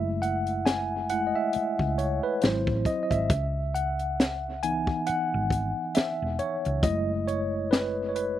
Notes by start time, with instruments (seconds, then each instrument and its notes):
Already playing: fingered electric bass F#1, tine electric piano G#3 A3 E4 E5
0.22 tine electric piano F#5, closed hi-hat
0.47 closed hi-hat
0.66 tine electric piano G#5, snare, closed hi-hat
1.10 tine electric piano G#3 A3 E4 F#5, closed hi-hat
1.27 tine electric piano D#5
1.35 tine electric piano E5
1.53 muted fingered electric bass stroke, closed hi-hat
1.79 fingered electric bass C#2, kick
1.98 tine electric piano C#5, closed hi-hat
2.23 tine electric piano B4
2.42 fingered electric bass G#1, tine electric piano F#3 C4 E4 C5, snare, closed hi-hat
2.67 fingered electric bass A1, kick
2.85 tine electric piano D#5, kick, closed hi-hat
3.03 tine electric piano D#5
3.11 fingered electric bass G#1, tine electric piano E5, kick, closed hi-hat
3.30 fingered electric bass C#2, kick, closed hi-hat
3.75 tine electric piano F#5, closed hi-hat
3.99 closed hi-hat
4.20 snare, closed hi-hat
4.63 tine electric piano E3 B3 D#4 G#5, closed hi-hat
4.87 kick
5.07 tine electric piano F#5, muted fingered electric bass stroke, closed hi-hat
5.34 fingered electric bass G#1
5.50 kick, closed hi-hat
5.95 tine electric piano E5, muted fingered electric bass stroke, snare, closed hi-hat
6.22 fingered electric bass E1
6.39 tine electric piano C#5, closed hi-hat
6.65 fingered electric bass C#2, closed hi-hat
6.83 fingered electric bass F#1, tine electric piano G#3 A3 E4 D#5, kick, closed hi-hat
7.28 tine electric piano C#5, closed hi-hat
7.71 tine electric piano B4, snare, closed hi-hat
8.09 tine electric piano C#5
8.15 tine electric piano B4, closed hi-hat